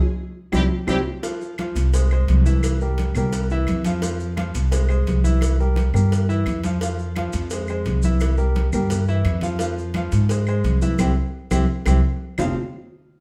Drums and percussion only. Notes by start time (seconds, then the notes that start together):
0.53 low bongo, high conga, claves, maracas
0.88 low bongo, high conga, claves, maracas
1.23 cowbell, high conga, maracas
1.41 high conga, maracas
1.58 cowbell, high conga, claves, maracas
1.76 cowbell, high conga, maracas
1.94 cowbell, high conga, maracas
2.11 high conga, claves, maracas
2.28 cowbell, high conga, maracas
2.46 high conga, maracas
2.63 cowbell, claves, maracas
2.81 high conga, maracas
2.98 cowbell, high conga, maracas
3.15 low conga, claves, maracas
3.33 cowbell, high conga, maracas
3.50 high conga, maracas
3.67 cowbell, high conga, claves, maracas
3.84 cowbell, high conga, maracas
4.02 cowbell, high conga, maracas
4.20 high conga, maracas
4.37 cowbell, high conga, claves, maracas
4.55 cowbell, high conga, maracas
4.72 cowbell, high conga, maracas
4.89 high conga, claves, maracas
5.07 cowbell, high conga, maracas
5.25 high conga, maracas
5.41 cowbell, high conga, claves, maracas
5.60 high conga, maracas
5.76 cowbell, high conga, maracas
5.94 low conga, claves, maracas
6.12 cowbell, high conga, maracas
6.30 maracas
6.46 cowbell, high conga, claves, maracas
6.64 cowbell, high conga, maracas
6.81 cowbell, maracas
6.99 high conga, maracas
7.16 cowbell, high conga, claves, maracas
7.33 cowbell, high conga, maracas
7.50 cowbell, high conga, maracas
7.68 high conga, claves, maracas
7.85 cowbell, high conga, maracas
8.02 high conga, maracas
8.20 cowbell, claves, maracas
8.38 high conga, maracas
8.55 cowbell, high conga, maracas
8.73 low conga, claves, maracas
8.90 cowbell, high conga, low conga, maracas
9.08 high conga, maracas
9.25 cowbell, high conga, claves, maracas
9.41 cowbell, high conga, maracas
9.59 cowbell, high conga, maracas
9.77 high conga, maracas
9.94 cowbell, high conga, claves, maracas
10.12 cowbell, high conga, maracas
10.29 cowbell, high conga, maracas
10.47 high conga, claves, maracas
10.64 cowbell, high conga, maracas
10.81 high conga, maracas
10.98 cowbell, high conga, claves, maracas
11.51 cowbell, high conga, claves, maracas
11.86 cowbell, high conga, claves, maracas
12.38 low bongo, low conga, claves, maracas